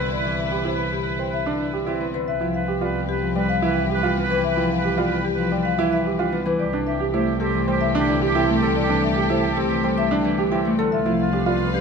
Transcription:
Already playing: C2 E3 B3 C4 E4 B4
0.00 D3
0.12 D5
0.18 B4
0.25 E3
0.39 E5
0.47 B4
0.51 G4
0.65 B3 E4 C5
0.74 B4
0.92 G4
1.02 B4
1.19 C5 G5
1.30 B4 E5
1.46 D3 D4
1.59 B4 D5
1.73 G4
1.86 C4 E4 B4 G5
2.01 B3
2.14 D3 B4
2.27 C2 G4 B4 E5
2.41 F3 E4
2.54 B4 F5
2.68 G4
2.81 B3 F4 B4 D5
3.09 G4 B4
3.22 F3
3.35 G3 B4 D5 G5
3.49 F5
3.62 E3 E4
3.67 B4
3.76 E5
3.90 G4
3.94 B4
4.03 D4 F4 G5
4.17 B3
4.23 B4
4.30 E3 B4
4.44 E5
4.51 B4
4.57 F3 E4
4.71 F5
4.78 B4
4.84 G4
4.98 B3 F4 D5
5.06 B4
5.25 G4
5.35 F3 B4
5.52 G3 D5 G5
5.63 B4 F5
5.78 E3 E4
5.90 B4 E5
6.06 G4
6.17 D4 F4 B4 G5
6.32 B3
6.45 E3 B4
6.59 C2 G4 A4 D5
6.73 E3 D4
6.87 G4 E5
7.00 G4
7.14 A3 E4 G4 C5
7.40 C4 G4 A4
7.54 E3
7.68 G3 G4 C5 G5
7.81 E5
7.95 D3 D4
7.99 G4
8.08 E3 D5
8.22 G4
8.27 G4
8.35 C4 E4 G5
8.49 A3
8.55 G4
8.62 D3 A4
8.76 D5
8.83 G4
8.89 E3 D4
9.03 E5
9.11 G4
9.16 G4
9.30 A3 E4 C5
9.39 G4
9.57 C4 G4 A4
9.68 E3 G4
9.84 G3 C5 G5
9.96 G4 E5
10.11 D3 D4
10.23 E3 G4 D5
10.39 G4
10.51 C4 E4 G4 G5
10.65 A3
10.79 D3 A4
10.92 C2 F4 B4 E5 F5
11.06 F3 E4
11.19 F4 F5
11.33 D4 G4
11.46 B3 F4 D5
11.50 F4
11.73 D4 G4 B4

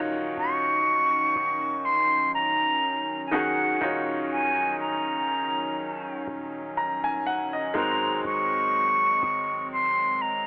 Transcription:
Already playing: D#1 D#3 F#3 C#4 D#4 F4 F#4 C#5 F#5
0.38 D#1 C#6
1.36 D#1
1.85 C6
2.34 A#5
3.27 G#5
3.31 D#3 C#4 D#4 F#4 G#4 F#5
3.81 D#1 D#3 D#4 F4 F#4 C#5
4.31 G#5
4.80 A#5
5.07 F#1
5.67 D#1
6.28 D#1
6.77 A#5
7.04 G#5
7.26 F#5
7.53 D#5
7.74 G#1 G#3 C4 D#4 F#4 A#4 A#5
8.24 G#1 C#6
9.23 G#1
9.72 C6
10.21 A#5

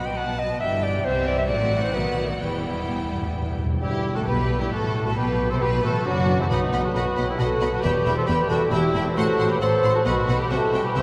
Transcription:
Already playing: B1 B2 F#3 B3 F#4 B5
0.06 G5
0.17 F#5 A5
0.39 D#5
0.60 G1 G2 E3 G3 G4 E5 G5
0.83 D5
1.04 C2 C3 E3 G3 C4 G4 C5 E5
1.27 D5
1.39 E5
1.49 A1 A2 F#3 A3 C4 F#4 D5 F#5
1.72 E3 G3
1.83 C5
1.93 B1 B2 D#3 F#3 B3 F#4 B4
2.29 F#4
2.40 E1 E2 E3 G3 B3 E4 G5
2.50 E2
2.57 E2
2.65 E2
2.73 E2
2.81 E2
2.88 E2
2.97 E2
3.04 E2
3.12 E2 G2
3.20 E2 A2
3.28 E2
3.35 E2 G2
3.42 E2
3.51 E2
3.59 E2
3.66 E2
3.74 E2
3.80 G1 G2 G3 E4 G4 G5
4.15 A2 A3 F#4 A4 A5
4.25 B1 B2 B3 G4 B4 B5
4.59 G2 G3 E4 G4 G5
4.71 A1 A2 A3 F#4 A4 A5
5.05 A2 A3 F#4 A4 A5
5.16 B1 B2 B3 G4 B4 B5
5.50 C3 C4 A4 C5 C6
5.60 B1 B2 B3 G4 B4 B5
5.83 A1 A2 A3 F#4 A4 A5
6.05 F#1 F#2 F#3 D4 F#4 F#5
6.39 E2 E3 C4 E4 E5
6.49 B1 B2 F#3 D#4 F#4 B4 D#5 F#5 B5
6.73 B1 B2 D#5 F#5 B5
6.83 F#4 A5
6.88 A4
6.94 B1 B2 F#4 D#5 F#5 B5
7.00 B4
7.17 B1 B2 D#5 F#5 B5
7.27 E4 G5
7.32 G4
7.38 B1 B2 F#4 D#5 F#5 A5 B5
7.42 A4
7.60 B1 B2 D#5 F#5 B5
7.71 F#4 A4 A5
7.82 E1 E2 G3 G4 B4 E5 G5 B5
8.06 E1 E2 E5 G5 B5
8.16 A4 C5 C6
8.26 E1 E2 G4 B4 B5
8.30 E5 G5
8.49 E1 E2 F#4 A4 E5 G5 A5 B5
8.69 E1 E2 E4 G4 G5 B5
8.74 E5 G5
8.94 E1 E2 E5 G5 B5
9.03 C4 E4 E5
9.13 A1 A2 F#3 F#4 A4 C5 A5 C6
9.18 F#5
9.38 A1 A2 F#5 C6
9.49 G4 B4 B5
9.61 A1 A2 A4 C5 F#5 C6
9.83 A1 A2 F#5 C6
9.94 F#4 A4 A5
10.05 B1 B2 D#3 F#4 B4 D#5 F#5 B5
10.28 B1 B2 D#5 F#5 B5
10.39 G4 B4 B5
10.50 C2 C3 E3 F#4 G4 A4 C5 E5 G5 A5
10.73 C2 C3 C5 E5 G5
10.84 G4 B4 B5
10.95 C2 C3 G4 C5 E5 G5 C6

